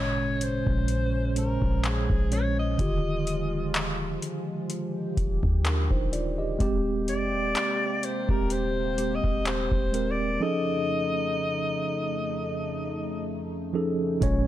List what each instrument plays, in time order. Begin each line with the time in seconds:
Already playing: 808-style bass G#1, tine electric piano A#2 G#3 C#4 C#5, analog synth pad C#3 G#3 C#4, alto saxophone C#5
0.41 alto saxophone C5, closed hi-hat
0.65 808-style bass A#1, tine electric piano A#2 G#3 C#4 C5, kick
0.88 analog synth pad G#3, closed hi-hat
1.35 tine electric piano A#2 G#3 C#4 C5, alto saxophone A#4, closed hi-hat
1.62 808-style bass A#1, kick
1.84 alto saxophone G#4, clap, closed hi-hat
2.10 808-style bass A#1, kick
2.30 tine electric piano A#2 G#3 C#4 C#5, alto saxophone C#5, closed hi-hat
2.59 alto saxophone D#5
2.78 808-style bass D#1, tine electric piano D3 D#3 F4 G4, analog synth pad F3 F4, kick, closed hi-hat
3.27 closed hi-hat
3.75 clap, closed hi-hat
4.22 closed hi-hat
4.69 analog synth pad G4, closed hi-hat
5.17 808-style bass D#1, kick, closed hi-hat
5.43 808-style bass D#2, kick
5.65 tine electric piano D4 A#4, clap, closed hi-hat
5.91 808-style bass D#1, tine electric piano D#4 C5, kick
6.13 tine electric piano F4 D5, closed hi-hat
6.38 tine electric piano G4 D#5
6.59 808-style bass D#1, analog synth pad C3 A#3, tine electric piano G#3 C4 G4, kick, closed hi-hat
7.08 808-style bass F1, alto saxophone D5, closed hi-hat
7.34 808-style bass D#1
7.56 clap, closed hi-hat
8.03 alto saxophone C5, closed hi-hat
8.28 808-style bass D#1, tine electric piano G#3 C4 G4, alto saxophone A#4, kick
8.50 alto saxophone C5, closed hi-hat
8.97 tine electric piano G#3 C4 G4, closed hi-hat
9.15 alto saxophone D#5
9.24 808-style bass D#1, kick
9.46 alto saxophone C5, clap, closed hi-hat
9.72 808-style bass D#1, kick
9.92 tine electric piano G#3 C4 A#4, closed hi-hat
10.11 alto saxophone D5
10.40 analog synth pad F2 C#3 A3 D#4, tine electric piano F3 C#4 D#4 G#4 A4, alto saxophone D#5
13.73 tine electric piano F3 C#4 D#4 G#4 A4
14.20 808-style bass A#1, tine electric piano A#2 G#3 C#4 C#5, analog synth pad C#3 G#3 C#4, kick, closed hi-hat